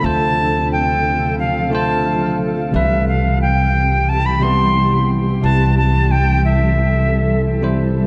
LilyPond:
<<
  \new Staff \with { instrumentName = "Flute" } { \time 4/4 \key c \major \tempo 4 = 89 a''4 g''4 f''8 a''4 r8 | e''8 f''8 g''4 a''16 b''16 c'''4 r8 | a''8 a''8 g''8 e''4. r4 | }
  \new Staff \with { instrumentName = "Ambient pad" } { \time 4/4 \key c \major << { <a' f''>1 | g'1 | a'1 | } \\ { <c f>1 | <e g>1~ | <e g>1 | } >> }
  \new Staff \with { instrumentName = "Tine electric piano" } { \time 4/4 \key c \major <d a f' c''>2~ <d a f' c''>8 <d a f' c''>4. | <c e g b'>2~ <c e g b'>8 <c g b e'>4. | <c g e' b'>2~ <c g e' b'>8 r8. <c g e' c''>8. | }
  \new Staff \with { instrumentName = "Upright bass" } { \clef bass \time 4/4 \key c \major d,1 | c,1 | c,1 | }
>>